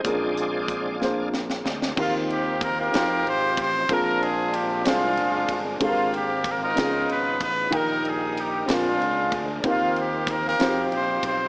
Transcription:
<<
  \new Staff \with { instrumentName = "Horn section" } { \time 6/8 \key ees \major \tempo 4. = 63 << { r2. | f'8 g'8 bes'16 bes'8. c''8 c''8 | bes'8 aes'8 g'8 f'4 r8 | f'8 g'8 bes'16 bes'8. ces''8 ces''8 |
bes'8 aes'8 g'8 f'4 r8 | f'8 g'8 bes'16 bes'8. c''8 c''8 | } \\ { r2. | <bes c'>4~ <bes c'>16 <f' g'>4. r16 | <d' f'>4. <aes d'>4. | <bes c'>4~ <bes c'>16 <ees' f'>4. r16 |
<ees' g'>4. <aes d'>4. | <bes c'>4~ <bes c'>16 <f' g'>4. r16 | } >> }
  \new Staff \with { instrumentName = "Upright piano" } { \time 6/8 \key ees \major <bes, bes des' d' f' aes' bes'>4. <bes c' d' f' aes' c''>4. | <ees c' ees' f' g' bes'>4. <c' ees' f' ges' g' c''>4. | <bes, c' d' f' aes' bes'>4. <c' d' f' aes' c''>4. | <aes, aes c' d' g' a' bes'>4. <des ces' des' ees' f' aes'>4. |
<bes, ees bes ees' bes' g''>4. <bes, c' d' f' aes' bes'>4. | <ees c' ees' f' g' bes'>4. <c' ees' f' ges' g' c''>4. | }
  \new Staff \with { instrumentName = "Tonewheel organ" } { \time 6/8 \key ees \major << { <f' aes' d''>2 r4 | <f c' ees' ges' g'>2. | <aes c' d' bes'>2. | <bes c' d' g' bes'>4. <f ces' des' ees'>4. |
<ees bes ees' aes' bes'>4. <aes c' d' bes'>4. | <f c' ees' g'>2. | } \\ { <aes c' d'>4. r4 <aes c' d'>8 | r2. | r2. | r2. |
r2. | r2. | } >> }
  \new Staff \with { instrumentName = "Fingered electric bass" } { \clef bass \time 6/8 \key ees \major bes,,2~ bes,,8 d,8 | ees,4. f,8 aes,,8 a,,8 | bes,,4. c,8 ges,,8 g,,8 | aes,,4. des,8 aes,,8 a,,8 |
bes,,4. bes,,8 des,8 d,8 | ees,4. f,8 bes,,8 ces,8 | }
  \new DrumStaff \with { instrumentName = "Drums" } \drummode { \time 6/8 <hh bd>8 hh8 <hh bd>8 sn8 sn16 sn16 sn16 sn16 | <cymc bd>8 cymr8 <bd cymr>8 <cymr sn>8 cymr8 <bd cymr>8 | <bd cymr>8 cymr8 cymr8 <cymr sn>8 cymr8 <bd cymr>8 | <bd cymr>8 cymr8 <bd cymr>8 <cymr sn>8 cymr8 <bd cymr>8 |
<bd cymr>8 cymr8 cymr8 <cymr sn>8 cymr8 <bd cymr>8 | <bd cymr>8 cymr8 <bd cymr>8 <cymr sn>8 cymr8 <bd cymr>8 | }
>>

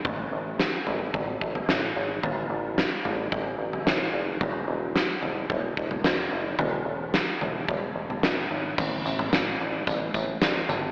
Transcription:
<<
  \new Staff \with { instrumentName = "Analog synth bass" } { \clef bass \time 4/4 \key e \mixolydian \tempo 4 = 110 a,,8 a,,8. r16 a,,8 a,,8 a,,8 a,,8 gis,,8 | a,,8 a,,8. r16 a,,8 a,,8 a,,8 a,,8 fis,,8 | e,,8 e,,8. r16 e,,8 e,,8 e,,8 e,,8 fis,,8 | e,,8 e,,8. r16 e,,8 e,,8 e,,8 e,,8 gis,,8 |
a,,8 a,,8 a,,8 a,,8 a,,8 a,,8 a,,8 gis,,8 | }
  \new DrumStaff \with { instrumentName = "Drums" } \drummode { \time 4/4 <bd tomfh>4 sn8 tomfh8 <bd tomfh>8 bd16 tomfh16 sn4 | tomfh4 sn8 tomfh8 <bd tomfh>8. tomfh16 sn4 | <bd tomfh>4 sn8 tomfh8 <bd tomfh>8 bd16 tomfh16 sn4 | tomfh4 sn8 tomfh8 <bd tomfh>8. tomfh16 sn4 |
<cymc bd tamb tomfh>8 tamb16 tomfh16 <sn tamb>4 <bd tamb tomfh>8 <bd tamb>8 <sn tamb>8 <tamb tomfh>8 | }
>>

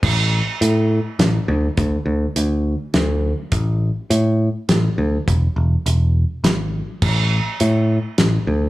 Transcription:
<<
  \new Staff \with { instrumentName = "Picked electric bass" } { \clef bass \time 3/4 \key e \mixolydian \tempo 4 = 103 a,,4 a,4 a,,8 d,8 | d,8 d,8 d,4 d,4 | a,,4 a,4 a,,8 d,8 | e,,8 e,,8 e,,4 gis,,4 |
a,,4 a,4 a,,8 d,8 | }
  \new DrumStaff \with { instrumentName = "Drums" } \drummode { \time 3/4 <cymc bd>4 hh4 <hh sn>4 | <hh bd>4 hh4 <hh sn>4 | <hh bd>4 hh4 <hh sn>4 | <hh bd>4 hh4 <hh sn>4 |
<cymc bd>4 hh4 <hh sn>4 | }
>>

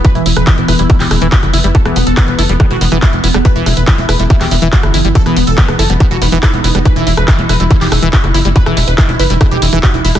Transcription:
<<
  \new Staff \with { instrumentName = "Supersaw synth" } { \time 4/4 \key e \minor \tempo 4 = 141 b'16 e'16 e'16 b'16 e'16 e'16 b'16 e'16 e'16 g'16 e'16 e'16 fis'16 e'16 e'16 e'16 | a'16 b16 b16 a'16 b16 b16 a'16 b16 b16 fis'16 b16 b16 e'16 b16 b16 b16 | b'16 e'16 e'16 b'16 e'16 e'16 b'16 e'16 e'16 g'16 e'16 e'16 fis'16 e'16 e'16 e'16 | a'16 b16 b16 a'16 b16 b16 a'16 b16 b16 fis'16 b16 b16 e'16 b16 b16 b16 |
b'16 e'16 e'16 b'16 e'16 e'16 b'16 e'16 e'16 g'16 e'16 e'16 fis'16 e'16 e'16 e'16 | b'16 e'16 e'16 b'16 e'16 e'16 b'16 e'16 e'16 g'16 e'16 e'16 fis'16 e'16 e'16 e'16 | }
  \new Staff \with { instrumentName = "Ambient pad" } { \time 4/4 \key e \minor <e b>1~ | <e b>1~ | <e b>1 | dis'1~ |
dis'1~ | dis'1 | }
  \new Staff \with { instrumentName = "Acid bass" } { \clef bass \time 4/4 \key e \minor e16 e16 g16 r16 dis16 fis'16 e'16 g16 dis16 e16 dis16 e16 e'16 r16 e'16 g16 | e16 e16 g16 r16 dis16 fis'16 e'16 g16 dis16 e16 dis16 e16 e'16 r16 e'16 g16 | e16 e16 g16 r16 dis16 fis'16 e'16 g16 dis16 e16 dis16 e16 e'16 r16 e'16 g16 | e16 e16 g16 r16 dis16 fis'16 e'16 g16 dis16 e16 dis16 e16 e'16 r16 e'16 g16 |
e16 e16 g16 r16 dis16 fis'16 e'16 g16 dis16 e16 dis16 e16 e'16 r16 e'16 g16 | e16 e16 g16 r16 dis16 fis'16 e'16 g16 dis16 e16 dis16 e16 e'16 r16 e'16 g16 | }
  \new Staff \with { instrumentName = "Analog synth bass" } { \clef bass \time 4/4 \key e \minor r16 e,,16 e,,16 e,,16 r16 e,,16 e,,16 e,,16 r16 e,,16 e,,16 e,,16 r16 fis,,16 fis,,16 fis,,16 | r16 e,,16 e,,16 e,,16 r16 e,,16 fis,,16 e,,16 r16 e,,16 e,,16 e,,16 r16 e,,16 e,,16 e,,16 | r16 e,,16 e,,16 e,,16 r16 e,,16 e,,16 e,,16 r16 e,,16 e,,16 e,,16 r16 g,,16 g,,16 g,,16 | r16 e,,16 e,,16 e,,16 r16 e,,16 fis,,16 e,,16 r16 e,,16 e,,16 e,,16 r16 e,,16 e,,16 e,,16 |
r16 e,,16 e,,16 e,,16 r16 e,,16 e,,16 e,,16 r16 e,,16 e,,16 e,,16 r16 fis,,16 fis,,16 fis,,16 | r16 e,,16 e,,16 e,,16 r16 e,,16 fis,,16 e,,16 r16 e,,16 e,,16 e,,16 r16 e,,16 e,,16 e,,16 | }
  \new DrumStaff \with { instrumentName = "Drums" } \drummode { \time 4/4 <hh bd>16 hh16 hho16 <hh ss>16 <hc hh bd>16 hh16 <hho ss>16 hh16 <hh bd>16 <hc hho>16 <hho ss>16 hh16 <hc hh bd>16 <hh ss>16 hho16 hh16 | <hh bd>16 <hh ss>16 hho16 hh16 <hc hh bd ss>16 hh16 hho16 hh16 <hh bd ss>16 hh16 hho16 <hh ss>16 <hc hh bd>16 hh16 hho16 <hh ss>16 | <hh bd>16 hh16 <hho ss>16 hh16 <hc hh bd>16 hh16 <hho ss>16 hh16 <hh bd>16 <hc hho ss>16 hho16 hh16 <hc hh bd>16 <hh ss>16 hho16 hh16 | <hh bd>16 <hh ss>16 hho16 hh16 <hc hh bd>16 <hh ss>16 hho16 hh16 <hh bd ss>16 hh16 hho16 hh16 <hc hh bd ss>16 hh16 hho16 <hh ss>16 |
<hh bd>16 hh16 hho16 <hh ss>16 <hc hh bd>16 hh16 <hho ss>16 hh16 <hh bd>16 <hc hho>16 <hho ss>16 hh16 <hc hh bd>16 <hh ss>16 hho16 hh16 | <hh bd>16 <hh ss>16 hho16 hh16 <hc hh bd ss>16 hh16 hho16 hh16 <hh bd ss>16 hh16 hho16 <hh ss>16 <hc hh bd>16 hh16 hho16 <hh ss>16 | }
>>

